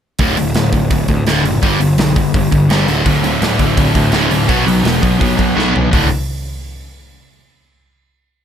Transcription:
0.19 0.34 D1 medium
0.19 0.36 D2 medium
0.19 0.36 A2 medium
0.19 0.37 D3 medium
0.19 kick loud
0.19 open hi-hat medium
0.37 0.52 D1 medium
0.37 0.53 D2 medium
0.37 0.53 A2 medium
0.37 open hi-hat medium
0.55 0.69 D1 loud
0.55 0.71 D2 loud
0.55 0.71 A2 medium
0.55 snare loud
0.55 open hi-hat medium
0.73 0.87 D1 medium
0.73 0.89 D2 medium
0.73 0.90 A2 medium
0.73 kick medium
0.73 open hi-hat medium
0.91 1.05 D1 loud
0.91 1.07 D2 medium
0.91 1.08 A2 medium
0.91 kick loud
0.91 open hi-hat medium
1.08 1.23 D2 medium
1.08 1.25 D2 medium
1.08 1.25 A2 medium
1.08 kick medium
1.08 open hi-hat medium
1.26 1.40 D1 medium
1.26 1.43 D2 medium
1.26 1.43 A2 medium
1.26 1.44 D3 loud
1.26 snare medium
1.26 open hi-hat medium
1.43 1.58 F#1 medium
1.43 1.61 D2 medium
1.43 1.61 A2 medium
1.43 open hi-hat medium
1.62 1.77 G1 medium
1.62 1.79 G2 medium
1.62 1.79 D3 medium
1.62 1.80 G3 medium
1.62 kick loud
1.62 open hi-hat medium
1.80 1.95 G1 medium
1.80 1.96 G2 medium
1.80 1.97 D3 medium
1.80 open hi-hat medium
1.98 2.13 B1 loud
1.98 2.14 G2 medium
1.98 2.14 D3 loud
1.98 snare loud
1.98 open hi-hat medium
2.16 2.30 G1 medium
2.16 2.32 G2 medium
2.16 2.32 D3 medium
2.16 kick medium
2.16 open hi-hat medium
2.34 2.48 G1 medium
2.34 2.50 G2 medium
2.34 2.51 D3 medium
2.34 kick loud
2.34 open hi-hat medium
2.51 2.67 G1 medium
2.51 2.68 G2 medium
2.51 2.68 D3 medium
2.51 kick medium
2.51 open hi-hat medium
2.70 2.84 G1 medium
2.70 2.87 G2 medium
2.70 2.87 D3 medium
2.70 2.87 G3 loud
2.70 snare loud
2.70 open hi-hat medium
2.88 3.02 D1 loud
2.88 3.05 D2 medium
2.88 3.05 A2 loud
2.88 3.05 D3 loud
2.88 open hi-hat medium
3.06 3.20 D1 medium
3.06 3.22 D2 medium
3.06 3.22 A2 medium
3.06 3.23 D3 loud
3.06 kick loud
3.06 open hi-hat medium
3.24 3.38 D1 medium
3.24 3.40 D2 medium
3.24 3.40 A2 medium
3.24 3.42 D3 loud
3.24 open hi-hat medium
3.42 3.56 D1 loud
3.42 3.58 D2 medium
3.42 3.58 A2 loud
3.42 3.59 D3 loud
3.42 snare loud
3.42 open hi-hat medium
3.59 3.74 D1 medium
3.59 3.76 D2 medium
3.59 3.76 A2 medium
3.59 3.77 D3 medium
3.59 kick loud
3.59 open hi-hat medium
3.77 3.92 D1 medium
3.77 3.93 D2 medium
3.77 3.94 A2 medium
3.77 3.93 D3 loud
3.77 kick loud
3.77 open hi-hat medium
3.94 4.11 D2 medium
3.94 4.09 D2 medium
3.94 4.11 A2 medium
3.94 4.13 D3 medium
3.94 kick medium
3.94 open hi-hat medium
4.12 4.27 D1 medium
4.12 4.30 D2 loud
4.12 4.30 A2 medium
4.12 4.30 D3 loud
4.12 snare loud
4.12 open hi-hat medium
4.31 4.46 D1 medium
4.31 4.47 D2 medium
4.31 4.47 A2 medium
4.31 4.48 D3 loud
4.31 open hi-hat medium
4.48 4.63 B1 medium
4.48 4.65 B2 medium
4.48 4.66 F#3 medium
4.48 4.66 B3 medium
4.48 kick loud
4.48 open hi-hat medium
4.66 4.81 B1 medium
4.66 4.83 B2 medium
4.66 4.83 F#3 medium
4.66 4.83 B3 medium
4.66 open hi-hat medium
4.84 4.99 E1 loud
4.84 5.01 B2 medium
4.84 5.01 F#3 loud
4.84 5.01 B3 loud
4.84 snare loud
4.84 open hi-hat medium
5.02 5.17 B1 medium
5.02 5.19 B2 medium
5.02 5.19 F#3 medium
5.02 5.19 B3 medium
5.02 kick loud
5.02 open hi-hat medium
5.20 5.36 B1 medium
5.20 5.37 B2 medium
5.20 5.37 F#3 medium
5.20 5.35 B3 loud
5.20 kick loud
5.20 open hi-hat medium
5.37 5.53 B1 medium
5.37 5.55 B2 medium
5.37 5.55 F#3 medium
5.37 5.55 B3 medium
5.37 kick medium
5.37 open hi-hat soft
5.56 5.85 B1 medium
5.56 5.74 B2 medium
5.56 5.74 F#3 medium
5.56 5.74 B3 loud
5.56 snare medium
5.73 5.91 B2 medium
5.73 5.91 F#3 medium
5.73 5.91 B3 loud
5.73 floor tom medium
5.92 6.10 D1 medium
5.92 6.07 D2 medium
5.92 6.08 A2 loud
5.92 6.08 D3 medium
5.92 6.07 A3 loud
5.92 6.07 F#4 loud
5.92 kick medium
5.92 floor tom medium
5.92 open hi-hat medium

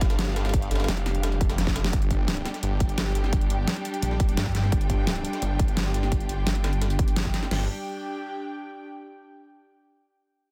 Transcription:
0.00 0.70 G1 loud
0.00 1.89 G3 medium
0.00 1.89 D4 medium
0.00 1.92 D4 medium
0.00 1.89 G4 medium
0.00 1.93 G4 medium
0.00 1.91 F5 medium
0.00 1.95 F5 medium
0.00 kick loud
0.00 snare loud
0.00 closed hi-hat medium
0.10 snare loud
0.10 closed hi-hat medium
0.10 closed hi-hat soft
0.19 snare loud
0.19 closed hi-hat medium
0.19 closed hi-hat loud
0.27 snare soft
0.36 snare loud
0.36 closed hi-hat medium
0.45 snare medium
0.45 snare soft
0.45 closed hi-hat medium
0.49 snare medium
0.49 closed hi-hat medium
0.54 kick loud
0.54 closed hi-hat loud
0.54 closed hi-hat medium
0.62 closed hi-hat soft
0.71 0.87 G1 loud
0.71 snare medium
0.71 closed hi-hat medium
0.75 snare medium
0.75 closed hi-hat medium
0.80 snare loud
0.80 closed hi-hat medium
0.84 snare loud
0.84 closed hi-hat medium
0.88 1.92 F1 loud
0.88 snare loud
0.88 closed hi-hat loud
0.97 snare soft
0.97 closed hi-hat soft
1.06 snare medium
1.06 closed hi-hat medium
1.06 open hi-hat medium
1.15 closed hi-hat soft
1.23 snare loud
1.23 closed hi-hat medium
1.23 closed hi-hat loud
1.32 closed hi-hat soft
1.41 kick loud
1.41 closed hi-hat medium
1.50 snare loud
1.50 closed hi-hat medium
1.50 closed hi-hat soft
1.58 snare medium
1.58 closed hi-hat soft
1.58 closed hi-hat loud
1.67 kick medium
1.67 snare medium
1.67 closed hi-hat medium
1.76 snare loud
1.76 closed hi-hat medium
1.84 snare medium
1.84 closed hi-hat soft
1.93 2.44 G1 loud
1.93 7.47 G3 medium
1.93 7.50 D4 medium
1.93 7.47 D4 medium
1.93 4.69 G4 medium
1.93 7.47 G5 medium
1.93 kick loud
1.93 closed hi-hat medium
2.02 closed hi-hat soft
2.07 7.51 G4 medium
2.07 kick medium
2.07 closed hi-hat medium
2.28 snare loud
2.28 closed hi-hat medium
2.37 snare soft
2.37 closed hi-hat soft
2.45 snare medium
2.45 closed hi-hat medium
2.54 snare soft
2.54 closed hi-hat soft
2.63 3.49 G1 medium
2.63 closed hi-hat medium
2.69 7.51 G5 medium
2.80 kick loud
2.80 closed hi-hat medium
2.89 closed hi-hat soft
2.98 snare loud
2.98 closed hi-hat medium
3.07 snare soft
3.15 snare soft
3.15 closed hi-hat medium
3.24 snare soft
3.33 kick loud
3.33 closed hi-hat medium
3.41 closed hi-hat soft
3.50 3.66 G1 loud
3.50 closed hi-hat medium
3.68 snare loud
3.68 closed hi-hat medium
3.76 snare soft
3.76 closed hi-hat soft
3.85 closed hi-hat medium
3.94 closed hi-hat soft
4.02 4.36 A#1 loud
4.02 closed hi-hat medium
4.11 snare soft
4.20 kick loud
4.20 closed hi-hat medium
4.29 closed hi-hat soft
4.37 4.53 G2 loud
4.37 snare loud
4.37 closed hi-hat medium
4.37 closed hi-hat loud
4.46 kick medium
4.55 4.71 G2 medium
4.55 snare medium
4.55 snare soft
4.55 closed hi-hat medium
4.63 snare soft
4.72 5.23 G1 loud
4.72 7.49 F4 medium
4.72 kick loud
4.72 closed hi-hat medium
4.81 closed hi-hat soft
4.90 kick medium
4.90 closed hi-hat medium
5.07 snare loud
5.07 closed hi-hat loud
5.07 closed hi-hat medium
5.16 snare soft
5.16 closed hi-hat soft
5.25 closed hi-hat medium
5.33 snare soft
5.33 closed hi-hat soft
5.42 6.28 G1 loud
5.42 closed hi-hat medium
5.59 kick loud
5.59 closed hi-hat medium
5.68 closed hi-hat soft
5.77 snare loud
5.77 closed hi-hat medium
5.86 snare soft
5.94 snare soft
5.94 closed hi-hat medium
6.03 snare soft
6.12 kick loud
6.12 closed hi-hat medium
6.20 closed hi-hat soft
6.29 6.45 G1 loud
6.29 closed hi-hat medium
6.47 7.32 G1 loud
6.47 snare loud
6.47 closed hi-hat medium
6.55 snare soft
6.55 closed hi-hat soft
6.64 snare loud
6.64 snare medium
6.64 closed hi-hat medium
6.73 closed hi-hat soft
6.82 snare loud
6.82 closed hi-hat medium
6.90 closed hi-hat medium
6.99 kick loud
6.99 closed hi-hat medium
7.08 closed hi-hat medium
7.08 closed hi-hat soft
7.16 snare loud
7.16 closed hi-hat medium
7.25 kick medium
7.25 snare soft
7.25 closed hi-hat medium
7.34 snare medium
7.34 snare soft
7.34 closed hi-hat medium
7.43 snare soft
7.51 7.68 G1 loud
7.51 7.67 G3 medium
7.51 8.87 D4 medium
7.51 7.68 D4 medium
7.51 7.67 G4 medium
7.51 7.67 G5 medium
7.51 snare loud
7.51 crash medium
7.57 8.87 G4 medium
7.62 8.87 G5 medium

